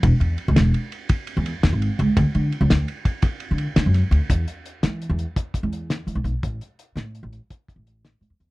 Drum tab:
RD |xxxxxxxxxxxx|xxxxxxxxxxxx|------------|------------|
HH |------------|------------|xxxxxxxxxxxx|xxxxxxxxxxxx|
SD |---o-----o--|---o-----oo-|---o-----o--|---o-----o--|
BD |o-----o-----|o----oo-----|o-----oo----|o-----oo----|